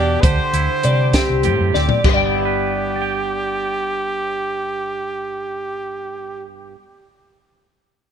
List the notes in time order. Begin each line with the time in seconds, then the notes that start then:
Already playing: E2 B2 E3 G3 D4 E4 G4 D5
0.21 D2 D3 C5, kick, closed hi-hat
0.25 G4
0.53 D2 E4, closed hi-hat
0.83 C3 G3 D5, closed hi-hat
1.13 C4 G4, kick, snare, closed hi-hat
1.30 C2
1.43 G2 A2 G4, closed hi-hat
1.60 F#2
1.74 D2 C4 D5, snare
1.89 floor tom
2.04 G1 G2 G4, kick, china
2.09 B4
2.13 G3 D5 G5
2.25 B3
2.35 E4
2.45 B4
2.96 D5
3.02 G5